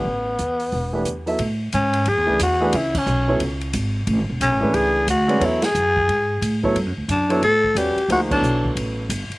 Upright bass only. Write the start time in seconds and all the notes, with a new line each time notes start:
0.05 A1
0.39 E2
0.72 E1
1.06 E2
1.39 A2
1.73 G#2
2.07 F#2
2.18 E2
2.28 C#2
2.40 E2
2.74 C#2
3.06 B1
3.40 C#2
3.74 G#1
4.07 A1
4.19 G#1
4.30 E1
4.40 B1
4.51 A1
4.63 G#1
4.74 C#2
5.07 D2
5.40 E2
5.75 F#2
6.08 G#2
6.41 A2
6.75 G2
6.86 F#2
6.97 D2
7.08 F#2
7.42 A2
7.75 E2
7.96 muted upright bass stroke
8.08 D2
8.42 B1
8.75 A1
9.09 G1
9.30 muted upright bass stroke